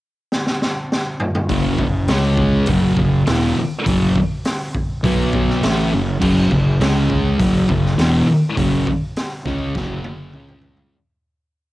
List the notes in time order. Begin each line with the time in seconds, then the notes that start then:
0.32 snare
0.47 snare
0.62 snare
0.92 snare
1.20 mid tom
1.35 mid tom
1.49 F#1 F#2 C#3 F#3, kick, open hi-hat
1.78 F#1 F#2 C#3, kick
2.07 C#2 C#3 G#3 C#4, snare, open hi-hat
2.37 kick
2.66 F#1 F#2, kick, open hi-hat
2.70 C#3 F#3
2.97 F#1 F#2 C#3, kick
3.27 E1 E2 B2 E3, snare, open hi-hat
3.57 muted fingered electric bass stroke, muted distorted electric guitar stroke
3.85 F#1 F#2 C#3 F#3, kick, open hi-hat
4.16 kick
4.45 snare, open hi-hat
4.75 kick
5.03 B1 B2 F#3 B3, kick, open hi-hat
5.33 kick
5.50 snare
5.63 A1 A2 E3 A3, snare, open hi-hat
5.93 F#1 F#2 C#3
6.21 F#1 F#2 C#3 F#3, kick, crash
6.51 F#1 F#2 C#3, kick
6.81 C#2 C#3 G#3 C#4, snare, open hi-hat
7.10 kick
7.39 F#1 F#2 C#3 F#3, kick, open hi-hat
7.69 F#1 F#2 C#3, kick
7.86 snare
7.98 E1 E2 B2 E3, snare, open hi-hat
8.26 muted fingered electric bass stroke, muted distorted electric guitar stroke
8.57 F#1 F#2 C#3 F#3, kick, open hi-hat
8.87 kick
9.16 snare, open hi-hat
9.45 C#2 C#3 G#3 C#4, kick, snare
9.75 F#1 F#2 C#3 F#3, kick, snare
10.04 high tom
10.33 C#2 C#3 G#3 C#4, mid tom
10.48 mid tom
10.62 floor tom
10.77 floor tom